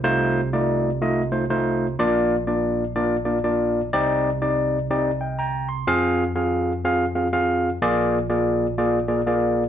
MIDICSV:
0, 0, Header, 1, 2, 480
1, 0, Start_track
1, 0, Tempo, 485437
1, 48, Time_signature, 4, 2, 24, 8
1, 9580, End_track
2, 0, Start_track
2, 0, Title_t, "Tine electric piano"
2, 0, Program_c, 0, 4
2, 38, Note_on_c, 0, 57, 96
2, 38, Note_on_c, 0, 65, 105
2, 40, Note_on_c, 0, 48, 77
2, 41, Note_on_c, 0, 63, 88
2, 42, Note_on_c, 0, 72, 127
2, 43, Note_on_c, 0, 36, 74
2, 397, Note_off_c, 0, 57, 0
2, 398, Note_off_c, 0, 65, 0
2, 399, Note_off_c, 0, 63, 0
2, 399, Note_off_c, 0, 72, 0
2, 526, Note_on_c, 0, 74, 87
2, 527, Note_on_c, 0, 65, 73
2, 528, Note_on_c, 0, 63, 77
2, 530, Note_on_c, 0, 57, 80
2, 882, Note_off_c, 0, 65, 0
2, 882, Note_off_c, 0, 74, 0
2, 883, Note_off_c, 0, 63, 0
2, 884, Note_off_c, 0, 57, 0
2, 1003, Note_on_c, 0, 57, 84
2, 1005, Note_on_c, 0, 65, 75
2, 1010, Note_on_c, 0, 63, 69
2, 1010, Note_on_c, 0, 75, 93
2, 1201, Note_off_c, 0, 57, 0
2, 1202, Note_off_c, 0, 65, 0
2, 1204, Note_off_c, 0, 63, 0
2, 1205, Note_off_c, 0, 75, 0
2, 1302, Note_on_c, 0, 65, 61
2, 1303, Note_on_c, 0, 57, 71
2, 1304, Note_on_c, 0, 63, 61
2, 1305, Note_on_c, 0, 72, 81
2, 1423, Note_off_c, 0, 57, 0
2, 1423, Note_off_c, 0, 65, 0
2, 1424, Note_off_c, 0, 63, 0
2, 1424, Note_off_c, 0, 72, 0
2, 1483, Note_on_c, 0, 57, 80
2, 1484, Note_on_c, 0, 65, 74
2, 1485, Note_on_c, 0, 63, 74
2, 1485, Note_on_c, 0, 72, 89
2, 1841, Note_off_c, 0, 57, 0
2, 1841, Note_off_c, 0, 63, 0
2, 1841, Note_off_c, 0, 65, 0
2, 1842, Note_off_c, 0, 72, 0
2, 1925, Note_off_c, 0, 48, 0
2, 1927, Note_off_c, 0, 36, 0
2, 1969, Note_on_c, 0, 65, 100
2, 1971, Note_on_c, 0, 46, 69
2, 1972, Note_on_c, 0, 62, 87
2, 1972, Note_on_c, 0, 74, 113
2, 1973, Note_on_c, 0, 34, 76
2, 1973, Note_on_c, 0, 58, 98
2, 2324, Note_off_c, 0, 65, 0
2, 2325, Note_off_c, 0, 58, 0
2, 2325, Note_off_c, 0, 62, 0
2, 2325, Note_off_c, 0, 74, 0
2, 2445, Note_on_c, 0, 58, 80
2, 2445, Note_on_c, 0, 74, 80
2, 2446, Note_on_c, 0, 65, 70
2, 2448, Note_on_c, 0, 62, 72
2, 2801, Note_off_c, 0, 58, 0
2, 2802, Note_off_c, 0, 65, 0
2, 2802, Note_off_c, 0, 74, 0
2, 2803, Note_off_c, 0, 62, 0
2, 2924, Note_on_c, 0, 62, 78
2, 2925, Note_on_c, 0, 74, 93
2, 2926, Note_on_c, 0, 58, 80
2, 2927, Note_on_c, 0, 65, 74
2, 3122, Note_off_c, 0, 62, 0
2, 3122, Note_off_c, 0, 74, 0
2, 3123, Note_off_c, 0, 58, 0
2, 3123, Note_off_c, 0, 65, 0
2, 3216, Note_on_c, 0, 58, 70
2, 3217, Note_on_c, 0, 74, 81
2, 3218, Note_on_c, 0, 62, 66
2, 3218, Note_on_c, 0, 65, 60
2, 3340, Note_off_c, 0, 58, 0
2, 3340, Note_off_c, 0, 74, 0
2, 3341, Note_off_c, 0, 62, 0
2, 3341, Note_off_c, 0, 65, 0
2, 3402, Note_on_c, 0, 65, 69
2, 3402, Note_on_c, 0, 74, 87
2, 3404, Note_on_c, 0, 58, 73
2, 3405, Note_on_c, 0, 62, 72
2, 3760, Note_off_c, 0, 65, 0
2, 3760, Note_off_c, 0, 74, 0
2, 3761, Note_off_c, 0, 58, 0
2, 3762, Note_off_c, 0, 62, 0
2, 3851, Note_off_c, 0, 46, 0
2, 3852, Note_off_c, 0, 34, 0
2, 3888, Note_on_c, 0, 74, 107
2, 3892, Note_on_c, 0, 48, 71
2, 3892, Note_on_c, 0, 60, 104
2, 3892, Note_on_c, 0, 63, 93
2, 3893, Note_on_c, 0, 36, 69
2, 3894, Note_on_c, 0, 67, 91
2, 4243, Note_off_c, 0, 74, 0
2, 4245, Note_off_c, 0, 60, 0
2, 4245, Note_off_c, 0, 63, 0
2, 4246, Note_off_c, 0, 67, 0
2, 4368, Note_on_c, 0, 60, 68
2, 4368, Note_on_c, 0, 63, 66
2, 4369, Note_on_c, 0, 67, 68
2, 4369, Note_on_c, 0, 74, 86
2, 4723, Note_off_c, 0, 60, 0
2, 4724, Note_off_c, 0, 63, 0
2, 4724, Note_off_c, 0, 67, 0
2, 4724, Note_off_c, 0, 74, 0
2, 4849, Note_on_c, 0, 60, 78
2, 4850, Note_on_c, 0, 63, 79
2, 4850, Note_on_c, 0, 67, 79
2, 4852, Note_on_c, 0, 74, 90
2, 5045, Note_off_c, 0, 60, 0
2, 5045, Note_off_c, 0, 63, 0
2, 5045, Note_off_c, 0, 67, 0
2, 5046, Note_off_c, 0, 74, 0
2, 5150, Note_on_c, 0, 79, 55
2, 5155, Note_on_c, 0, 75, 45
2, 5321, Note_off_c, 0, 79, 0
2, 5324, Note_off_c, 0, 75, 0
2, 5326, Note_on_c, 0, 82, 69
2, 5335, Note_on_c, 0, 79, 60
2, 5613, Note_off_c, 0, 82, 0
2, 5617, Note_off_c, 0, 79, 0
2, 5623, Note_on_c, 0, 84, 62
2, 5772, Note_off_c, 0, 36, 0
2, 5772, Note_off_c, 0, 48, 0
2, 5808, Note_on_c, 0, 65, 104
2, 5809, Note_on_c, 0, 60, 101
2, 5810, Note_on_c, 0, 41, 72
2, 5810, Note_on_c, 0, 68, 98
2, 5811, Note_on_c, 0, 77, 116
2, 6082, Note_off_c, 0, 84, 0
2, 6163, Note_off_c, 0, 65, 0
2, 6164, Note_off_c, 0, 60, 0
2, 6165, Note_off_c, 0, 68, 0
2, 6165, Note_off_c, 0, 77, 0
2, 6284, Note_on_c, 0, 60, 77
2, 6284, Note_on_c, 0, 68, 73
2, 6286, Note_on_c, 0, 77, 82
2, 6289, Note_on_c, 0, 65, 76
2, 6641, Note_off_c, 0, 60, 0
2, 6641, Note_off_c, 0, 68, 0
2, 6643, Note_off_c, 0, 77, 0
2, 6644, Note_off_c, 0, 65, 0
2, 6770, Note_on_c, 0, 60, 80
2, 6771, Note_on_c, 0, 68, 73
2, 6773, Note_on_c, 0, 77, 95
2, 6774, Note_on_c, 0, 65, 79
2, 6965, Note_off_c, 0, 60, 0
2, 6966, Note_off_c, 0, 68, 0
2, 6967, Note_off_c, 0, 65, 0
2, 6967, Note_off_c, 0, 77, 0
2, 7070, Note_on_c, 0, 65, 67
2, 7073, Note_on_c, 0, 68, 60
2, 7074, Note_on_c, 0, 77, 73
2, 7075, Note_on_c, 0, 60, 71
2, 7187, Note_off_c, 0, 65, 0
2, 7189, Note_off_c, 0, 68, 0
2, 7190, Note_off_c, 0, 60, 0
2, 7190, Note_off_c, 0, 77, 0
2, 7246, Note_on_c, 0, 68, 66
2, 7247, Note_on_c, 0, 60, 77
2, 7248, Note_on_c, 0, 65, 76
2, 7248, Note_on_c, 0, 77, 94
2, 7602, Note_off_c, 0, 68, 0
2, 7603, Note_off_c, 0, 60, 0
2, 7603, Note_off_c, 0, 77, 0
2, 7604, Note_off_c, 0, 65, 0
2, 7691, Note_off_c, 0, 41, 0
2, 7732, Note_on_c, 0, 46, 77
2, 7733, Note_on_c, 0, 34, 76
2, 7733, Note_on_c, 0, 58, 108
2, 7733, Note_on_c, 0, 68, 101
2, 7734, Note_on_c, 0, 65, 100
2, 7734, Note_on_c, 0, 74, 114
2, 8086, Note_off_c, 0, 58, 0
2, 8086, Note_off_c, 0, 65, 0
2, 8086, Note_off_c, 0, 68, 0
2, 8086, Note_off_c, 0, 74, 0
2, 8203, Note_on_c, 0, 74, 84
2, 8204, Note_on_c, 0, 58, 78
2, 8206, Note_on_c, 0, 65, 70
2, 8206, Note_on_c, 0, 68, 74
2, 8561, Note_off_c, 0, 74, 0
2, 8562, Note_off_c, 0, 58, 0
2, 8562, Note_off_c, 0, 65, 0
2, 8562, Note_off_c, 0, 68, 0
2, 8682, Note_on_c, 0, 65, 78
2, 8683, Note_on_c, 0, 58, 78
2, 8683, Note_on_c, 0, 68, 77
2, 8686, Note_on_c, 0, 74, 90
2, 8881, Note_off_c, 0, 65, 0
2, 8882, Note_off_c, 0, 58, 0
2, 8882, Note_off_c, 0, 68, 0
2, 8883, Note_off_c, 0, 74, 0
2, 8981, Note_on_c, 0, 68, 66
2, 8981, Note_on_c, 0, 74, 80
2, 8982, Note_on_c, 0, 58, 72
2, 8982, Note_on_c, 0, 65, 69
2, 9103, Note_off_c, 0, 58, 0
2, 9103, Note_off_c, 0, 65, 0
2, 9103, Note_off_c, 0, 68, 0
2, 9103, Note_off_c, 0, 74, 0
2, 9163, Note_on_c, 0, 58, 86
2, 9165, Note_on_c, 0, 68, 73
2, 9167, Note_on_c, 0, 74, 83
2, 9169, Note_on_c, 0, 65, 69
2, 9521, Note_off_c, 0, 58, 0
2, 9522, Note_off_c, 0, 68, 0
2, 9523, Note_off_c, 0, 74, 0
2, 9524, Note_off_c, 0, 65, 0
2, 9580, Note_off_c, 0, 34, 0
2, 9580, Note_off_c, 0, 46, 0
2, 9580, End_track
0, 0, End_of_file